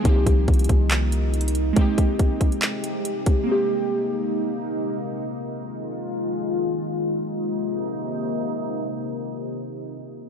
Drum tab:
HH |x-----------x-----------x--x--x--x--x-----------x-----------x-----------x---x---x---x-----------|x-----------x-----------x-----------x-----x-----x-----------x-----------x-----------x-----------|------------------------------------------------------------------------------------------------|------------------------------------------------------------------------------------------------|
CP |------------------------------------------------x-----------------------------------------------|------------------------------------------------x-----------------------------------------------|------------------------------------------------------------------------------------------------|------------------------------------------------------------------------------------------------|
BD |o-----------o-----------o-----------o-----------------------------------------------------------|o-----------o-----------o-----------o-----------------------------------------------o-----------|------------------------------------------------------------------------------------------------|------------------------------------------------------------------------------------------------|

HH |------------------------------------------------------------------------------------------------|------------------------------------------------------------------------------------------------|
CP |------------------------------------------------------------------------------------------------|------------------------------------------------------------------------------------------------|
BD |------------------------------------------------------------------------------------------------|------------------------------------------------------------------------------------------------|